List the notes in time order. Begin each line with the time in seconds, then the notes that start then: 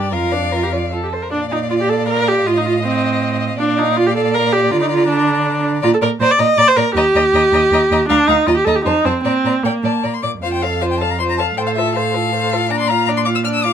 Already playing: G2 D4 G4 D5
0.12 F2 F4 A#4 F5
0.32 D4 D5
0.52 F4 A#4
0.63 G4
0.72 F4 D5
0.92 F4 A4
1.03 G4
1.12 A4 C5
1.22 A#4
1.31 A#2 D4 D5 F5
1.52 D#4
1.70 F4
1.81 G4
1.89 A4
2.09 A#4
2.28 G4
2.46 A2 F4 D#5
2.58 D#4
2.66 F4
2.84 C4
3.59 A#2 D4 D5 F5
3.78 D#4
3.97 F4
4.07 G4
4.16 A4
4.34 A#4
4.53 G4
4.70 D3 F4 A#5
4.82 D#4
4.91 F4
5.09 D4
5.82 A#2 F4 D5 A#5
5.94 A4
6.02 A#2 A#4 D5 A#5
6.20 A#2 C5 D5 A#5
6.31 D5
6.38 A#2 D5 D#5 A#5
6.57 A#2 D5 A#5
6.68 C5
6.76 A#2 A#4 D5 A#5
6.95 D#2 G4 D#5 A#5
7.15 D#2 D#5 A#5
7.33 D#2 D#5 A#5
7.52 D#2 D#5 A#5
7.72 D#2 D#5 A#5
7.91 D#2 D#5 A#5
8.09 D2 D4 F5 A#5
8.27 D2 D#4 F5 A#5
8.47 D#2 F4 D#5 A#5
8.56 G4
8.65 D#2 A4 D#5 A#5
8.75 G4
8.85 F2 D#4 C5 A5
9.05 F2 C4 C5 A5
9.24 A#2 C4 D5 A#5
9.44 A#2 D5 A#5
9.63 A#2 A#3 D5 G5
9.84 A#2 D5 A5
10.03 A#2 D5 A#5
10.14 C6
10.23 A#2 D5 D6
10.42 F2 F4 C5 F5
10.53 G5
10.62 A4 F5
10.81 F4 C5 F5
10.91 G5
11.00 A4 F5 A5
11.11 A#5
11.19 F4 C5 C6
11.29 A#5
11.38 A4 F5 A5
11.57 A2 A4 C5 G5
11.66 F5
11.75 F4 A4 E5
11.94 A4 C5 F5
12.14 F4 A4
12.33 A4 C5
12.53 F4 A4
12.70 A#2 D4 D5 A#5
12.79 C6
12.88 F4 F5 A#5
13.07 D4 D5 A#5
13.17 C6
13.25 F4 F5 D6
13.35 E6
13.44 D4 D5 F6
13.54 E6
13.63 F4 F5 D6